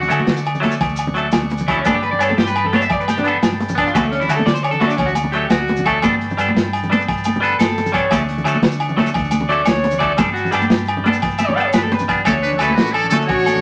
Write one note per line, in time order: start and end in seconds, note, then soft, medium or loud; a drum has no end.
0.00 0.34 F#4 medium
0.00 1.84 D5 medium
0.00 1.84 F#5 medium
0.00 1.84 C#6 medium
0.00 low conga medium
0.00 maracas soft
0.08 0.27 D3 medium
0.08 0.20 F#3 medium
0.08 0.20 A3 medium
0.08 0.21 C#4 medium
0.08 0.21 A4 medium
0.08 closed hi-hat soft
0.08 low agogo medium
0.08 maracas medium
0.20 muted conga medium
0.20 high conga medium
0.27 0.77 D3 medium
0.27 snare medium
0.27 closed hi-hat medium
0.37 maracas medium
0.45 closed hi-hat soft
0.45 low agogo medium
0.55 low conga medium
0.55 maracas soft
0.60 0.72 F#3 medium
0.60 0.73 A3 medium
0.60 0.74 C#4 medium
0.60 0.74 A4 medium
0.60 snare soft
0.60 closed hi-hat medium
0.60 muted conga medium
0.60 high conga medium
0.71 maracas medium
0.81 1.30 D2 loud
0.81 kick medium
0.81 closed hi-hat medium
0.81 low agogo medium
0.89 maracas soft
0.96 closed hi-hat soft
0.96 low agogo medium
0.96 maracas loud
1.07 muted conga medium
1.07 low conga medium
1.14 1.26 F#3 medium
1.14 1.27 A3 medium
1.14 1.27 A4 medium
1.14 closed hi-hat medium
1.25 low conga soft
1.32 1.83 D2 medium
1.32 snare medium
1.32 closed hi-hat medium
1.32 low agogo medium
1.32 maracas medium
1.43 high conga medium
1.50 closed hi-hat soft
1.50 muted conga medium
1.50 maracas soft
1.58 low conga medium
1.58 maracas medium
1.68 1.79 F#3 medium
1.68 1.79 A3 medium
1.68 1.80 C#4 medium
1.68 1.77 E4 medium
1.68 1.80 A4 medium
1.68 kick medium
1.68 closed hi-hat medium
1.68 low agogo medium
1.78 1.86 C#4 medium
1.84 2.19 G1 loud
1.84 1.96 B3 medium
1.84 1.96 D4 medium
1.84 1.95 D4 medium
1.84 1.97 A4 medium
1.84 3.93 B4 medium
1.84 3.93 G5 medium
1.84 3.93 A5 medium
1.84 kick medium
1.84 closed hi-hat medium
1.84 muted conga loud
1.84 high conga medium
1.84 low agogo medium
1.84 maracas loud
1.94 2.03 G4 medium
2.03 2.11 B4 medium
2.03 closed hi-hat medium
2.03 low conga soft
2.11 2.20 D5 medium
2.11 low conga medium
2.19 2.37 G2 medium
2.19 2.31 B3 medium
2.19 2.32 D4 medium
2.19 2.32 A4 medium
2.19 2.29 C#5 medium
2.19 closed hi-hat medium
2.19 low agogo medium
2.19 maracas medium
2.29 2.37 A4 medium
2.29 muted conga medium
2.29 high conga medium
2.29 low conga soft
2.37 2.87 G2 medium
2.37 2.47 G4 medium
2.37 snare medium
2.37 closed hi-hat medium
2.37 low conga soft
2.47 2.56 B4 medium
2.47 low conga soft
2.47 maracas medium
2.56 2.65 B4 medium
2.56 closed hi-hat soft
2.56 low conga soft
2.56 low agogo medium
2.64 2.74 A4 medium
2.64 low conga medium
2.73 2.84 B3 medium
2.73 2.84 D4 medium
2.73 2.85 A4 medium
2.73 2.82 C#5 medium
2.73 snare soft
2.73 closed hi-hat soft
2.73 muted conga medium
2.73 high conga medium
2.73 low conga soft
2.81 2.91 E5 medium
2.81 maracas medium
2.90 3.40 G1 medium
2.90 3.00 D5 medium
2.90 kick medium
2.90 closed hi-hat medium
2.90 low agogo medium
3.00 3.08 B4 medium
3.00 low conga soft
3.00 maracas soft
3.08 3.17 G4 medium
3.08 closed hi-hat soft
3.08 high conga medium
3.08 low agogo medium
3.08 maracas medium
3.18 3.26 D4 medium
3.18 muted conga medium
3.18 low conga medium
3.24 3.35 B3 medium
3.24 3.37 B3 medium
3.24 3.36 D4 medium
3.24 3.37 A4 medium
3.24 closed hi-hat soft
3.35 low conga soft
3.42 3.92 G1 medium
3.42 snare medium
3.42 closed hi-hat medium
3.42 low agogo medium
3.42 maracas medium
3.52 high conga medium
3.60 closed hi-hat soft
3.60 muted conga loud
3.60 low conga soft
3.60 maracas soft
3.69 muted clean electric guitar stroke medium
3.69 low conga medium
3.69 maracas medium
3.75 3.87 B3 medium
3.75 3.88 D4 medium
3.75 3.87 D4 medium
3.75 3.89 A4 medium
3.75 kick medium
3.75 closed hi-hat medium
3.75 low agogo medium
3.86 3.95 F4 medium
3.86 maracas soft
3.94 4.28 D2 loud
3.94 4.05 F#3 medium
3.94 4.05 A3 medium
3.94 4.06 C#4 medium
3.94 4.03 F#4 medium
3.94 4.06 A4 medium
3.94 6.03 D5 medium
3.94 6.03 F#5 medium
3.94 6.03 C#6 medium
3.94 kick medium
3.94 closed hi-hat medium
3.94 muted conga loud
3.94 high conga loud
3.94 low agogo medium
3.94 maracas medium
4.03 4.12 A3 medium
4.12 4.21 C#4 medium
4.12 closed hi-hat medium
4.20 4.29 E4 medium
4.20 low conga medium
4.20 maracas soft
4.29 4.45 D3 medium
4.29 4.40 F#3 medium
4.29 4.40 A3 medium
4.29 4.41 C#4 medium
4.29 4.36 F#4 medium
4.29 4.41 A4 medium
4.29 closed hi-hat medium
4.29 low agogo medium
4.29 maracas medium
4.36 4.46 A4 medium
4.36 muted conga medium
4.36 high conga medium
4.46 4.96 D3 medium
4.46 4.54 D5 loud
4.46 snare medium
4.46 closed hi-hat medium
4.54 4.63 C5 medium
4.54 maracas medium
4.63 4.71 C#5 loud
4.63 closed hi-hat medium
4.63 low agogo medium
4.71 4.81 A4 medium
4.71 low conga medium
4.71 maracas soft
4.80 4.92 F#3 medium
4.80 4.92 A3 medium
4.80 4.93 C#4 medium
4.80 4.90 F#4 medium
4.80 snare soft
4.80 closed hi-hat medium
4.80 muted conga loud
4.80 high conga loud
4.84 4.97 D4 medium
4.84 4.94 A4 medium
4.90 maracas medium
4.97 5.48 D2 loud
4.97 5.07 C#4 medium
4.97 kick medium
4.97 closed hi-hat medium
4.97 low agogo medium
5.06 5.12 F#4 medium
5.06 maracas soft
5.15 closed hi-hat medium
5.15 high conga medium
5.15 low agogo medium
5.15 maracas medium
5.24 muted conga medium
5.24 low conga medium
5.32 5.45 F#3 medium
5.32 5.45 A3 medium
5.32 5.50 G4 medium
5.32 closed hi-hat soft
5.37 5.46 C#4 medium
5.37 5.46 A4 medium
5.42 low conga soft
5.50 6.00 D2 medium
5.50 5.83 F#4 medium
5.50 snare medium
5.50 closed hi-hat medium
5.50 low agogo medium
5.50 maracas medium
5.60 high conga medium
5.68 closed hi-hat soft
5.68 muted conga loud
5.68 maracas soft
5.76 low conga medium
5.76 maracas medium
5.85 5.97 F#3 medium
5.85 5.97 A3 medium
5.85 5.98 C#4 medium
5.85 6.03 A4 medium
5.85 5.98 A4 medium
5.85 kick medium
5.85 closed hi-hat soft
5.85 low agogo medium
6.02 6.36 G1 loud
6.02 6.13 G3 medium
6.02 6.14 B3 medium
6.02 6.14 D4 medium
6.02 6.14 A4 medium
6.02 8.10 B4 medium
6.02 8.10 G5 medium
6.02 8.10 A5 medium
6.02 kick medium
6.02 closed hi-hat medium
6.02 muted conga loud
6.02 high conga loud
6.02 low agogo medium
6.02 maracas medium
6.21 closed hi-hat medium
6.30 low conga medium
6.30 maracas soft
6.37 6.54 G2 medium
6.37 6.49 G3 medium
6.37 6.49 B3 medium
6.37 6.50 D4 medium
6.37 6.50 A4 medium
6.37 closed hi-hat medium
6.37 low agogo medium
6.37 maracas medium
6.49 muted conga medium
6.49 high conga medium
6.54 7.04 G2 medium
6.54 snare medium
6.54 closed hi-hat medium
6.73 closed hi-hat medium
6.73 low agogo medium
6.83 low conga medium
6.83 maracas soft
6.90 7.01 G3 medium
6.90 7.01 B3 medium
6.90 7.02 D4 medium
6.90 7.02 A4 medium
6.90 closed hi-hat soft
6.90 muted conga medium
6.90 high conga loud
7.01 maracas medium
7.08 7.57 G1 loud
7.08 kick medium
7.08 closed hi-hat medium
7.08 low agogo medium
7.17 maracas soft
7.24 closed hi-hat medium
7.24 high conga medium
7.24 low agogo medium
7.24 maracas medium
7.36 muted conga medium
7.36 low conga medium
7.40 7.52 G3 medium
7.40 7.53 B3 medium
7.40 7.53 D4 medium
7.40 7.54 A4 medium
7.40 7.59 B4 medium
7.40 closed hi-hat medium
7.53 low conga soft
7.59 8.08 G1 medium
7.59 7.92 A4 medium
7.59 snare medium
7.59 closed hi-hat medium
7.59 low agogo medium
7.59 maracas medium
7.70 high conga medium
7.78 closed hi-hat soft
7.78 muted conga medium
7.78 maracas soft
7.86 low conga medium
7.86 maracas medium
7.92 8.04 G3 medium
7.92 8.05 B3 medium
7.92 8.05 D4 medium
7.92 8.05 A4 medium
7.92 8.11 C#5 loud
7.92 kick medium
7.92 closed hi-hat medium
7.92 low agogo medium
8.10 8.44 D2 loud
8.10 8.21 F#3 medium
8.10 8.22 A3 medium
8.10 8.22 C#4 medium
8.10 10.16 D4 medium
8.10 8.22 A4 medium
8.10 10.17 F#5 medium
8.10 10.17 C#6 medium
8.10 kick medium
8.10 closed hi-hat medium
8.10 muted conga loud
8.10 high conga medium
8.10 low agogo medium
8.10 maracas loud
8.29 closed hi-hat medium
8.38 low conga medium
8.38 maracas soft
8.44 8.61 D3 medium
8.44 8.56 F#3 medium
8.44 8.57 A3 medium
8.44 8.57 C#4 medium
8.44 8.58 A4 medium
8.44 closed hi-hat medium
8.44 low agogo medium
8.44 maracas medium
8.55 muted conga medium
8.55 high conga medium
8.62 9.11 D3 medium
8.62 snare loud
8.62 closed hi-hat medium
8.71 maracas medium
8.80 closed hi-hat soft
8.80 low agogo medium
8.89 low conga medium
8.89 maracas soft
8.97 9.08 F#3 medium
8.97 9.08 A3 medium
8.97 9.09 C#4 medium
8.97 9.10 A4 medium
8.97 snare soft
8.97 closed hi-hat medium
8.97 muted conga medium
8.97 high conga loud
9.06 maracas medium
9.14 9.64 D2 loud
9.14 kick medium
9.14 closed hi-hat medium
9.14 low agogo medium
9.24 maracas soft
9.31 closed hi-hat soft
9.31 high conga medium
9.31 low agogo medium
9.31 maracas medium
9.41 muted conga medium
9.41 low conga medium
9.49 9.60 F#3 medium
9.49 9.61 A3 medium
9.49 9.61 C#4 medium
9.49 9.62 A4 medium
9.49 9.65 D5 medium
9.49 closed hi-hat soft
9.58 low conga soft
9.65 10.16 D2 loud
9.65 9.98 C#5 loud
9.65 snare medium
9.65 closed hi-hat medium
9.65 low agogo medium
9.65 maracas medium
9.76 high conga medium
9.84 closed hi-hat soft
9.84 muted conga loud
9.84 maracas soft
9.91 low conga medium
9.91 maracas medium
9.99 10.11 F#3 medium
9.99 10.12 A3 medium
9.99 10.12 C#4 medium
9.99 10.13 A4 medium
9.99 10.10 D5 loud
9.99 kick medium
9.99 closed hi-hat medium
9.99 low agogo medium
10.17 10.51 G1 loud
10.17 10.28 G3 medium
10.17 10.29 D4 medium
10.17 10.29 A4 medium
10.17 12.24 B4 medium
10.17 12.24 G5 medium
10.17 12.24 A5 medium
10.17 muted clean electric guitar stroke medium
10.17 kick medium
10.17 closed hi-hat medium
10.17 muted conga loud
10.17 high conga loud
10.17 low agogo medium
10.17 maracas medium
10.34 10.51 F#4 medium
10.34 closed hi-hat medium
10.34 low conga soft
10.34 maracas soft
10.44 low conga medium
10.44 maracas soft
10.51 10.69 G2 medium
10.51 10.63 G3 medium
10.51 10.63 B3 medium
10.51 10.64 D4 medium
10.51 11.04 G4 medium
10.51 10.64 A4 medium
10.51 closed hi-hat medium
10.51 low agogo medium
10.51 maracas medium
10.61 muted conga medium
10.61 high conga medium
10.61 maracas soft
10.70 11.20 G2 medium
10.70 snare loud
10.70 closed hi-hat medium
10.77 maracas medium
10.85 closed hi-hat medium
10.85 low conga soft
10.85 low agogo medium
10.85 maracas soft
10.97 low conga medium
11.04 11.15 G3 medium
11.04 11.16 B3 medium
11.04 11.16 D4 medium
11.04 11.17 A4 medium
11.04 closed hi-hat medium
11.04 muted conga loud
11.04 high conga loud
11.13 low conga soft
11.13 maracas medium
11.22 11.71 G1 loud
11.22 kick medium
11.22 closed hi-hat medium
11.22 low conga soft
11.22 low agogo medium
11.22 maracas soft
11.30 maracas soft
11.38 11.48 E5 medium
11.38 closed hi-hat medium
11.38 high conga medium
11.38 low agogo medium
11.38 maracas loud
11.48 11.57 C#5 medium
11.48 muted conga medium
11.48 low conga medium
11.57 11.67 G3 medium
11.57 11.68 B3 medium
11.57 11.68 D4 medium
11.57 11.69 A4 medium
11.57 11.65 G5 medium
11.57 closed hi-hat medium
11.65 11.74 C#5 medium
11.73 12.23 G1 medium
11.73 11.83 B4 medium
11.73 snare medium
11.73 closed hi-hat medium
11.73 low conga soft
11.73 low agogo medium
11.73 maracas loud
11.83 11.92 A4 medium
11.83 high conga medium
11.92 12.02 B4 medium
11.92 closed hi-hat soft
11.92 muted conga loud
11.92 low conga soft
11.99 low conga medium
11.99 maracas medium
12.08 12.19 G3 medium
12.08 12.19 B3 medium
12.08 12.20 D4 medium
12.08 muted clean electric guitar stroke medium
12.08 kick medium
12.08 closed hi-hat medium
12.08 low agogo medium
12.08 maracas soft
12.25 12.59 D2 loud
12.25 12.36 F#3 medium
12.25 12.36 A3 medium
12.25 12.37 C#4 medium
12.25 12.35 C#4 medium
12.25 13.61 D4 medium
12.25 12.34 A4 medium
12.25 12.37 A4 medium
12.25 12.59 C#5 medium
12.25 13.61 F#5 medium
12.25 13.61 C#6 medium
12.25 kick medium
12.25 closed hi-hat medium
12.25 muted conga medium
12.25 high conga medium
12.25 low conga soft
12.25 low agogo medium
12.25 maracas medium
12.42 12.52 D4 medium
12.42 12.50 B4 medium
12.42 closed hi-hat soft
12.51 low conga medium
12.51 maracas soft
12.57 12.77 D2 medium
12.57 12.71 F#3 medium
12.57 12.71 A3 medium
12.57 12.78 C#4 medium
12.57 12.75 A4 medium
12.57 12.94 B4 medium
12.57 closed hi-hat soft
12.57 low agogo medium
12.57 maracas medium
12.62 12.72 C#4 medium
12.62 12.72 A4 medium
12.70 muted conga medium
12.70 high conga medium
12.70 low conga soft
12.74 13.10 A1 medium
12.74 12.93 A3 medium
12.74 12.94 F#4 medium
12.74 snare medium
12.74 closed hi-hat medium
12.86 maracas medium
12.92 13.08 C#4 medium
12.92 13.09 A4 medium
12.92 13.28 A4 medium
12.92 closed hi-hat soft
12.92 low conga soft
12.92 low agogo medium
13.04 low conga medium
13.09 13.28 D3 medium
13.09 13.23 F#3 medium
13.09 13.23 A3 medium
13.09 13.17 C#4 medium
13.09 13.18 A4 medium
13.09 snare soft
13.09 closed hi-hat soft
13.09 muted conga medium
13.09 high conga medium
13.14 13.23 C#4 medium
13.14 13.24 A4 medium
13.21 maracas medium
13.26 13.61 A1 medium
13.26 13.61 F#4 medium
13.26 13.45 F#4 medium
13.26 13.61 C#5 medium
13.26 kick medium
13.26 closed hi-hat medium
13.26 low conga soft
13.26 low agogo medium
13.38 maracas soft
13.45 13.61 A4 medium
13.45 closed hi-hat medium
13.45 high conga medium
13.45 low agogo medium
13.45 maracas medium
13.56 muted conga medium
13.56 low conga medium